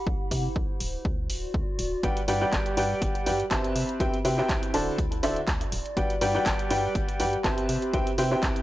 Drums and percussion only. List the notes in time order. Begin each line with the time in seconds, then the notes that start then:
0.07 kick
0.31 kick, open hi-hat
0.56 kick
0.80 open hi-hat
1.05 kick
1.30 open hi-hat
1.54 kick
1.79 open hi-hat
2.03 kick, closed hi-hat
2.17 closed hi-hat
2.28 open hi-hat
2.53 kick, clap, closed hi-hat
2.66 closed hi-hat
2.77 open hi-hat
3.02 kick, closed hi-hat
3.15 closed hi-hat
3.26 open hi-hat
3.40 closed hi-hat
3.51 kick, clap, closed hi-hat
3.64 closed hi-hat
3.76 open hi-hat
3.89 closed hi-hat
4.00 kick, closed hi-hat
4.14 closed hi-hat
4.25 open hi-hat
4.38 clap
4.49 kick, clap, closed hi-hat
4.63 closed hi-hat
4.74 open hi-hat
4.98 kick, closed hi-hat
5.12 closed hi-hat
5.23 open hi-hat
5.36 closed hi-hat
5.48 kick, clap, closed hi-hat
5.61 closed hi-hat
5.72 open hi-hat
5.86 closed hi-hat
5.97 kick, closed hi-hat
6.10 closed hi-hat
6.21 open hi-hat
6.46 kick, clap, closed hi-hat
6.59 closed hi-hat
6.71 open hi-hat
6.95 kick, closed hi-hat
7.09 closed hi-hat
7.20 open hi-hat
7.33 closed hi-hat
7.44 kick, clap, closed hi-hat
7.58 closed hi-hat
7.69 open hi-hat
7.82 closed hi-hat
7.94 kick, closed hi-hat
8.07 closed hi-hat
8.18 open hi-hat
8.32 clap
8.43 kick, clap, closed hi-hat
8.56 closed hi-hat